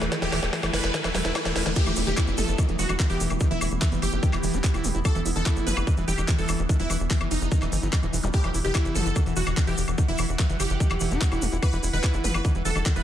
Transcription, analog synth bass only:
0.02 0.09 E1 medium
0.22 0.29 E1 medium
0.32 0.40 E1 loud
0.43 0.50 E1 medium
0.63 0.70 F#1 medium
0.73 0.81 F#1 loud
0.84 0.91 F#1 medium
1.04 1.12 E1 medium
1.15 1.22 E1 loud
1.25 1.32 E1 medium
1.45 1.53 E1 medium
1.56 1.63 E1 loud
1.66 1.73 E1 medium
1.87 1.94 E1 medium
1.97 2.04 E1 loud
2.07 2.14 E1 medium
2.28 2.35 F#1 medium
2.38 2.45 F#1 loud
2.48 2.55 F#1 medium
2.69 2.76 E1 medium
2.79 2.86 E1 loud
2.89 2.96 E1 medium
3.10 3.17 E1 medium
3.20 3.27 E1 loud
3.30 3.38 E1 medium
3.51 3.58 E1 medium
3.61 3.68 E1 loud
3.71 3.79 E1 medium
3.92 3.99 F#1 medium
4.02 4.09 F#1 loud
4.12 4.20 F#1 medium
4.33 4.40 E1 medium
4.43 4.51 E1 loud
4.54 4.61 E1 medium
4.74 4.81 E1 medium
4.84 4.92 E1 loud
4.95 5.02 E1 medium
5.15 5.22 E1 medium
5.26 5.33 E1 loud
5.36 5.43 E1 medium
5.56 5.64 F#1 medium
5.67 5.74 F#1 loud
5.77 5.84 F#1 medium
5.97 6.05 E1 medium
6.08 6.15 E1 loud
6.18 6.25 E1 medium
6.39 6.46 E1 medium
6.49 6.56 E1 loud
6.59 6.66 E1 medium
6.80 6.87 E1 medium
6.90 6.97 E1 loud
7.00 7.07 E1 medium
7.21 7.28 F#1 medium
7.31 7.38 F#1 loud
7.41 7.49 F#1 medium
7.62 7.69 E1 medium
7.72 7.79 G1 loud
7.82 7.90 G1 medium
8.03 8.10 E1 medium
8.13 8.20 E1 loud
8.23 8.31 E1 medium
8.44 8.51 E1 medium
8.54 8.62 E1 loud
8.65 8.72 E1 medium
8.85 8.92 F#1 medium
8.95 9.03 F#1 loud
9.06 9.13 F#1 medium
9.26 9.33 E1 medium
9.37 9.44 E1 loud
9.47 9.54 E1 medium
9.67 9.75 E1 medium
9.78 9.85 E1 loud
9.88 9.95 E1 medium
10.08 10.16 E1 medium
10.19 10.26 E1 loud
10.29 10.36 E1 medium
10.50 10.57 F#1 medium
10.60 10.67 F#1 loud
10.70 10.77 F#1 medium
10.91 10.98 E1 medium
11.01 11.08 E1 loud
11.11 11.18 E1 medium
11.32 11.39 E1 medium
11.42 11.49 E1 loud
11.52 11.59 E1 medium
11.73 11.80 E1 medium
11.83 11.90 E1 loud
11.93 12.01 E1 medium
12.14 12.21 F#1 medium
12.24 12.31 F#1 medium
12.34 12.42 F#1 medium
12.55 12.62 E1 medium
12.65 12.72 E1 loud
12.76 12.83 E1 medium
12.96 13.03 E1 medium

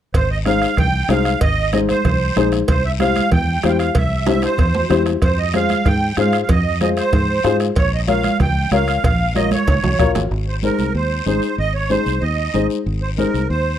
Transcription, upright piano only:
0.45 0.68 D#4 medium
0.45 0.68 G#4 medium
0.45 0.69 C5 medium
1.08 1.31 D#4 medium
1.08 1.31 G#4 medium
1.08 1.32 C5 medium
1.72 1.95 D#4 medium
1.72 1.95 G#4 medium
1.72 1.95 C5 medium
2.36 2.59 D#4 medium
2.36 2.59 G#4 medium
2.36 2.59 C5 loud
2.99 3.22 E4 medium
2.99 3.22 G4 medium
2.99 3.22 C5 medium
3.63 3.86 E4 medium
3.63 3.86 G4 medium
3.63 3.86 C5 medium
4.26 4.49 E4 medium
4.26 4.49 G4 medium
4.26 4.49 C5 medium
4.89 5.12 E4 medium
4.89 5.12 G4 medium
4.89 5.13 C5 medium
5.54 5.76 F4 medium
5.54 5.76 G#4 medium
5.54 5.76 C5 medium
6.17 6.39 F4 medium
6.17 6.40 G#4 medium
6.17 6.40 C5 medium
6.81 7.03 F4 medium
6.81 7.03 G#4 medium
6.81 7.03 C5 medium
7.44 7.66 F4 medium
7.44 7.67 G#4 medium
7.44 7.67 C5 loud
8.07 8.30 F4 medium
8.07 8.30 A#4 medium
8.07 8.30 C#5 medium
8.72 8.94 F4 medium
8.72 8.94 A#4 medium
8.72 8.94 C#5 medium
9.35 9.57 F4 medium
9.35 9.58 A#4 medium
9.35 9.58 C#5 medium
9.99 10.21 F4 medium
9.99 10.22 A#4 medium
9.99 10.22 C#5 medium
10.63 10.85 D#4 medium
10.63 10.85 G#4 medium
10.63 10.85 C5 medium
11.26 11.49 D#4 medium
11.26 11.49 G#4 medium
11.26 11.49 C5 medium
11.89 12.12 D#4 medium
11.89 12.12 G#4 medium
11.89 12.13 C5 medium
12.54 12.76 D#4 medium
12.54 12.77 G#4 medium
12.54 12.77 C5 medium
13.18 13.40 D#4 medium
13.18 13.40 G#4 medium
13.18 13.41 C5 medium

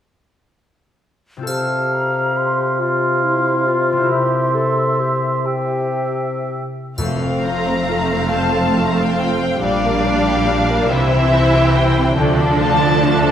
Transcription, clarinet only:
1.47 2.82 G4 soft
2.80 3.25 F4 soft
3.24 3.66 E4 soft
3.67 4.13 F4 soft
4.12 4.57 G4 soft
4.55 5.02 A4 soft
5.00 5.46 G4 soft
5.47 6.61 G4 soft

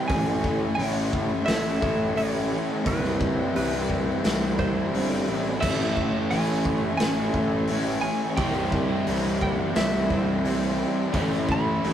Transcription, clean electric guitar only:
0.08 0.75 G#5 loud
0.75 1.45 F#5 loud
1.46 2.18 E5 loud
2.17 2.87 C#5 loud
2.87 3.55 B4 medium
3.56 4.59 B4 medium
4.59 5.65 C5 loud
5.61 6.30 E5 medium
6.31 6.96 G#5 medium
6.97 8.00 G#5 loud
8.01 8.36 G#5 loud
8.37 9.42 G5 loud
9.42 9.76 F#5 medium
9.77 10.76 E5 medium
11.52 11.93 B5 loud

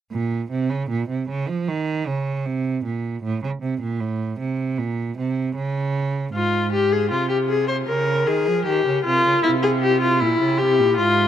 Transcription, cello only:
0.12 0.48 A#2 medium
0.51 0.72 C3 medium
0.70 0.89 C#3 medium
0.90 1.09 A#2 medium
1.09 1.28 C3 medium
1.29 1.50 C#3 medium
1.48 1.70 F3 medium
1.68 2.08 D#3 medium
2.07 2.47 C#3 medium
2.46 2.84 C3 medium
2.85 3.23 A#2 medium
3.23 3.42 A2 medium
3.42 3.50 C#3 medium
3.62 3.80 C3 medium
3.81 4.02 A#2 medium
4.01 4.39 A2 medium
4.39 4.80 C3 medium
4.79 5.17 A#2 medium
5.18 5.55 C3 medium
5.55 6.32 C#3 medium
6.34 7.13 G#2 medium
7.11 7.88 C3 medium
7.89 8.29 C#3 medium
8.28 8.48 D#3 medium
8.47 8.66 F3 medium
8.66 8.86 D#3 medium
8.87 9.05 C#3 medium
9.06 9.25 C3 medium
9.25 9.33 C#3 medium
9.45 10.23 C3 medium
10.22 10.41 A#2 medium
10.41 10.62 C#3 medium
10.61 10.81 C3 medium
10.79 11.00 A#2 medium
10.99 11.28 G#2 medium

